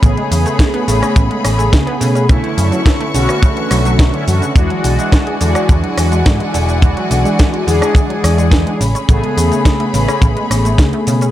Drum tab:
HH |xxoxxxoxxxoxxxox|xxoxxxoxxxoxxxox|xxoxxxoxxxoxxxox|xxoxxxoxxxoxxxox|
SH |x-xxx-xxx-xxx-xx|x-xxx-xxx-xxx-xx|x-xxx-xxx-xxx-xx|x-xxx-xxx-xxx-xx|
SD |----o--r--r-o---|----o--r--r-o---|----o--r--r-o---|----o--r--r-o---|
BD |o---o---o---o---|o---o---o---o---|o---o---o---o---|o---o---o---o---|

HH |xxoxxxoxxxoxxxox|
SH |x-xxx-xxx-xxx-xx|
SD |----o--r--r-o---|
BD |o---o---o---o---|